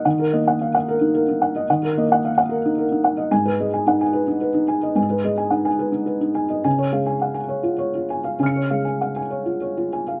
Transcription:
<<
  \new Staff \with { instrumentName = "Felt piano" } { \time 3/4 \key ees \minor \tempo 4 = 108 << { r2. | r2. | aes''8 r2 r8 | r2. |
aes''8 r2 r8 | <f''' des''''>2. | } \\ { <ees'' ges''>16 bes'16 ees''16 ges''16 f''16 ges''16 bes'16 ees'16 bes'16 ees'16 ges''16 ees''16 | ges''16 bes'16 ees''16 ges''16 f''16 ges''16 bes'16 ees'16 bes'16 ees'16 ges''16 ees''16 | r16 ces''16 ees''16 aes''16 ges''16 aes''16 ces''16 ees'16 ces''16 ees'16 aes''16 ees''16 | aes''16 ces''16 ees''16 aes''16 ges''16 aes''16 ces''16 ees'16 ces''16 ees'16 aes''16 ees''16 |
r16 des''16 f''16 aes''16 ges''16 aes''16 des''16 f'16 des''16 f'16 aes''16 f''16 | aes''16 des''16 f''16 aes''16 ges''16 aes''16 des''16 f'16 des''16 f'16 aes''16 f''16 | } >> }
  \new Staff \with { instrumentName = "Felt piano" } { \clef bass \time 3/4 \key ees \minor ees8 bes4 r4. | ees8 bes4 r4. | aes,8 aes8 ees'4 r4 | aes,8 aes8 ees'4 r4 |
des8 aes4 r4. | des8 aes4 r4. | }
>>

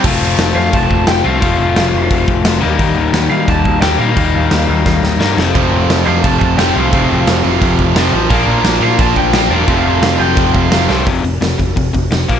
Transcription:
<<
  \new Staff \with { instrumentName = "Lead electric guitar" } { \time 4/4 \key f \mixolydian \tempo 4 = 174 r4. f''8 a''4 g''8 f''8~ | f''2~ f''8 r4. | r4. f''8 a''4 g''8 f''8~ | f''2~ f''8 r4. |
r4. f''8 a''8 a''8 g''8 f''8~ | f''2~ f''8 r4. | r4. f''8 a''8 g''4 f''8~ | f''8 f''8 f''8 g''4 f''4 r8 |
\key c \mixolydian r1 | }
  \new Staff \with { instrumentName = "Overdriven electric guitar" } { \clef bass \time 4/4 \key f \mixolydian <f a c' f'>2.~ <f a c' f'>8 <f a c' f'>8 | <f a c' f'>2.~ <f a c' f'>8 <ees g bes ees'>8~ | <ees g bes ees'>2. <ees g bes ees'>8 <ees g bes ees'>8~ | <ees g bes ees'>2. <ees g bes ees'>8 <f, c f a c'>8~ |
<f, c f a c'>2. <f, c f a c'>8 <f, c f a c'>8~ | <f, c f a c'>2. <f, c f a c'>8 r8 | <bes, f bes d'>2.~ <bes, f bes d'>8 <bes, f bes d'>8 | <f, c f a c'>2.~ <f, c f a c'>8 <f, c f a c'>8 |
\key c \mixolydian <f, c f>8 <f, c>8 <f, c>8 <f, c>8 <f, c>8 <f, c>8 <f, c>8 <bes, f bes>8 | }
  \new Staff \with { instrumentName = "Distorted electric guitar" } { \clef bass \time 4/4 \key f \mixolydian r1 | r1 | r1 | r1 |
<f, c f>4. <f, c f>4. <f, c f>4 | <f, c f>4. <f, c f>4. <f, c f>4 | <bes, f bes>4. <bes, f bes>4. <bes, f bes>4 | <f, c f>4. <f, c f>4. <f, c f>4 |
\key c \mixolydian r1 | }
  \new Staff \with { instrumentName = "Picked electric bass" } { \clef bass \time 4/4 \key f \mixolydian f,,8 f,,8 f,,8 f,8 f,,8 f,,8 f,,8 c,8 | f,,8 f,,8 f,,8 f,,8 f,,8 f,,8 f,,8 ees,8 | ees,8 ees,8 ees,8 ees8 ees,8 ees,8 ees,8 bes,8 | ees,8 ees,8 ees,8 ees,8 ees,8 ees,8 g,8 f,,8 |
f,,8 f,,8 f,,8 f,8 f,,8 f,,8 f,,8 c,8 | f,,8 f,,8 f,,8 f,,8 f,,8 f,,8 f,,8 a,,8 | bes,,8 bes,,8 bes,,8 bes,8 bes,,8 bes,,8 bes,,8 e,,8 | f,,8 f,,8 f,,8 f,,8 f,,8 f,,8 f,,8 c,8 |
\key c \mixolydian f,,8 f,,8 f,,8 f,,8 f,,8 f,,8 f,,8 bes,,8 | }
  \new DrumStaff \with { instrumentName = "Drums" } \drummode { \time 4/4 <cymc bd>4 <cymc sn>4 <cymc bd>8 bd8 <cymc sn>4 | <cymc bd>4 <cymc sn>4 <cymc bd>8 bd8 <cymc sn>4 | <cymc bd>4 <cymc sn>4 <cymc bd>8 bd8 <cymc sn>4 | <cymc bd>4 <cymc sn>4 <bd sn>8 sn8 sn8 sn8 |
<cymc bd>4 <cymc sn>4 <cymc bd>8 bd8 <cymc sn>4 | <cymc bd>4 <cymc sn>4 <cymc bd>8 bd8 <cymc sn>4 | <cymc bd>4 <cymc sn>4 <cymc bd>8 bd8 <cymc sn>4 | <cymc bd>4 <cymc sn>4 <cymc bd>8 bd8 <cymc sn>8 sn8 |
<hho bd>8 hho8 <hho sn>8 <hho bd>8 <hho bd>8 <hho bd>8 <hho sn>8 <hho bd>8 | }
>>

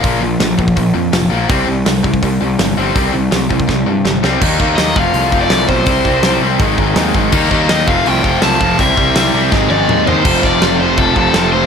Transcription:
<<
  \new Staff \with { instrumentName = "Overdriven electric guitar" } { \time 4/4 \key c \mixolydian \tempo 4 = 165 r1 | r1 | r1 | r4 ees''8 f''4~ f''16 d''8. c''8~ |
c''4. r2 r8 | r4 ees''8 f''8 g''4 a''4 | e''2 r8 d''4 c''8~ | c''8 d''4 c''8 a'8 a'4 c''8 | }
  \new Staff \with { instrumentName = "Distorted electric guitar" } { \clef bass \time 4/4 \key c \mixolydian r1 | r1 | r1 | r1 |
r1 | <ees g bes ees'>4. <f a c' f'>4. <f a c' f'>4 | <c e g c' e'>4. <c e g c' e'>8 <aes, ees aes c' ees'>4. <aes, ees aes c' ees'>8 | <f, c f a c'>2.~ <f, c f a c'>8 <f, c f a c'>8 | }
  \new Staff \with { instrumentName = "Distorted electric guitar" } { \clef bass \time 4/4 \key c \mixolydian <bes, f bes>8 <bes, f>8 <bes, f>8 <bes, f>8 <bes, f>8 <bes, f>8 <bes, f>8 <bes, f bes>8 | <c g c'>8 <c g>8 <c g>8 <c g>8 <c g>8 <c g>8 <c g>8 <c g c'>8 | <c g c'>8 <c g>8 <c g>8 <c g>8 <c g>8 <c g>8 <c g>8 <c g c'>8 | <ees g bes ees'>8 <ees g bes ees'>8 <ees g bes ees'>8 <f a c' f'>8 <f a c' f'>8 <f a c' f'>8 <f a c' f'>8 <f a c' f'>8 |
<c g c' e'>8 <c g c' e'>8 <c g c' e'>8 <c g c' e'>8 <aes, ees aes c' ees'>8 <aes, ees aes c' ees'>8 <aes, ees aes c' ees'>8 <aes, ees aes c' ees'>8 | <ees g bes ees'>8 <ees g bes ees'>8 <ees g bes ees'>8 <f a c' f'>8 <f a c' f'>8 <f a c' f'>8 <f a c' f'>8 <f a c' f'>8 | <c g c' e'>8 <c g c' e'>8 <c g c' e'>8 <c g c' e'>8 <aes, ees aes c' ees'>8 <aes, ees aes c' ees'>8 <aes, ees aes c' ees'>8 <aes, ees aes c' ees'>8 | <f, c f a c'>4. <f, c f a c'>4. <f, c f a c'>4 | }
  \new Staff \with { instrumentName = "Distorted electric guitar" } { \clef bass \time 4/4 \key c \mixolydian <bes, f bes>8 <bes, f>8 <bes, f>8 <bes, f>8 <bes, f>8 <bes, f>8 <bes, f>8 <bes, f bes>8 | <c g c'>8 <c g>8 <c g>8 <c g>8 <c g>8 <c g>8 <c g>8 <c g c'>8 | <c g c'>8 <c g>8 <c g>8 <c g>8 <c g>8 <c g>8 <c g>8 <c g c'>8 | <ees bes ees'>8 <ees bes ees'>8 <ees bes ees'>8 <f, c f>8 <f, c f>8 <f, c f>8 <f, c f>8 <f, c f>8 |
<c g c'>8 <c g c'>8 <c g c'>8 <c g c'>8 <aes, ees aes>8 <aes, ees aes>8 <aes, ees aes>8 <aes, ees aes>8 | <ees bes ees'>8 <ees bes ees'>8 <ees bes ees'>8 <f, c f>8 <f, c f>8 <f, c f>8 <f, c f>8 <f, c f>8 | <c g c'>8 <c g c'>8 <c g c'>8 <c g c'>8 <aes, ees aes>8 <aes, ees aes>8 <aes, ees aes>8 <aes, ees aes>8 | <f, c f>2~ <f, c f>8 <f, c f>8 <f, c f>4 | }
  \new Staff \with { instrumentName = "Picked electric bass" } { \clef bass \time 4/4 \key c \mixolydian bes,,8 bes,,8 bes,,8 bes,,8 bes,,8 f,8 f,,8 bes,,8 | c,8 c,8 c,8 c,8 c,8 c,8 g,,8 g,,8 | c,8 c,8 c,8 c,8 c,8 g,8 g,,8 c,8 | ees,8 ees,8 ees,8 f,,8 c,8 f,,8 c,8 b,,8 |
c,8 c,8 c,8 c,8 aes,,8 aes,,8 ees,8 aes,,8 | ees,8 ees,8 ees,8 f,,8 c,8 f,,8 c,8 f,,8 | c,8 c,8 c,8 c,8 aes,,8 aes,,8 ees,8 ees,8 | f,,8 f,,8 f,,4 f,,8 f,,8 f,,4 | }
  \new DrumStaff \with { instrumentName = "Drums" } \drummode { \time 4/4 <hho bd>4 <hho sn>8 bd16 bd16 <hho bd>4 <hho sn>4 | <hho bd>4 <hho sn>8 bd16 bd16 <hho bd>4 <hho sn>4 | <hho bd>4 <hho sn>8 bd16 bd16 <bd sn>4 sn8 sn8 | <cymc bd>8 bd8 <hho sn>8 bd8 hho8 bd8 <hho sn>8 bd8 |
<hho bd>8 bd8 <hho sn>4 <hho bd>8 bd8 <hho sn>8 bd8 | <cymc bd>8 bd8 <hho sn>8 bd8 hho8 bd8 <hho sn>8 bd8 | <hho bd>8 bd8 <hho sn>4 <bd sn>8 tommh8 toml8 tomfh8 | <cymc bd>8 bd8 <cymc sn>4 <cymc bd>8 bd8 <cymc sn>4 | }
>>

